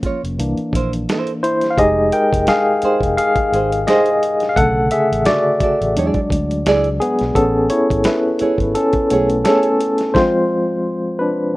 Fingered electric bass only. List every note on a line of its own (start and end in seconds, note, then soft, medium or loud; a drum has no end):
0.03 muted fingered electric bass stroke soft
0.24 0.38 F1 medium
0.39 0.56 C2 medium
0.58 muted fingered electric bass stroke soft
0.73 1.05 A#1 medium
1.78 2.10 F1 loud
2.33 2.47 F1 medium
2.83 muted fingered electric bass stroke soft
3.01 3.16 F1 medium
3.36 muted fingered electric bass stroke soft
3.52 3.84 G#1 medium
4.57 4.89 B1 medium
5.12 5.26 A1 medium
5.61 muted fingered electric bass stroke soft
5.81 5.95 A1 medium
5.97 6.14 E2 medium
6.31 6.63 D2 medium
6.66 6.98 C#2 medium
7.21 7.35 B1 medium
7.36 7.68 A1 loud
7.91 8.05 G#1 medium
8.41 muted fingered electric bass stroke soft
8.59 8.73 G#1 medium
8.94 muted fingered electric bass stroke soft
9.12 9.43 B1 medium